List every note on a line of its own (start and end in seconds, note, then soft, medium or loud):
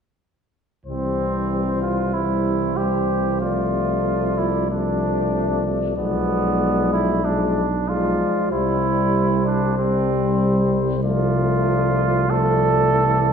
0.86 5.93 C2 soft
0.86 2.10 E3 soft
0.86 2.10 G3 soft
0.86 1.78 C4 soft
0.86 2.10 C5 soft
1.82 2.15 F4 soft
2.14 2.76 E3 soft
2.14 2.77 G3 soft
2.14 2.78 E4 soft
2.14 2.77 C5 soft
2.77 3.43 E3 soft
2.77 3.41 G3 soft
2.77 3.40 G4 soft
2.77 3.44 C5 soft
3.41 4.69 F3 soft
3.41 4.67 A3 soft
3.41 4.39 F4 soft
3.41 4.69 D5 soft
4.38 4.70 E4 soft
4.70 5.95 F3 soft
4.70 5.95 A3 soft
4.70 5.64 D4 soft
4.70 5.95 D5 soft
5.96 8.19 B1 soft
5.96 7.22 F3 soft
5.96 7.22 G#3 soft
5.96 6.88 B3 soft
5.96 7.22 D5 soft
6.93 7.26 E4 soft
7.24 7.65 F3 soft
7.24 7.65 G#3 soft
7.24 7.90 D4 soft
7.24 7.65 D5 soft
7.88 8.53 F3 soft
7.88 8.53 G#3 soft
7.88 8.51 F4 soft
7.88 8.52 D5 soft
8.51 13.33 C2 soft
8.51 9.78 G3 soft
8.51 9.77 G3 soft
8.51 9.45 E4 soft
8.51 9.77 C5 soft
9.46 9.77 D4 soft
9.78 11.01 G3 soft
9.78 11.02 G3 soft
9.78 10.71 C4 soft
9.78 11.02 C5 soft
11.03 12.27 F3 soft
11.03 12.27 A3 soft
11.03 12.32 F4 soft
11.03 12.26 D5 soft
12.29 12.93 F3 soft
12.29 13.33 A3 soft
12.29 13.33 A4 medium
12.29 13.33 D5 soft
12.92 13.33 E3 soft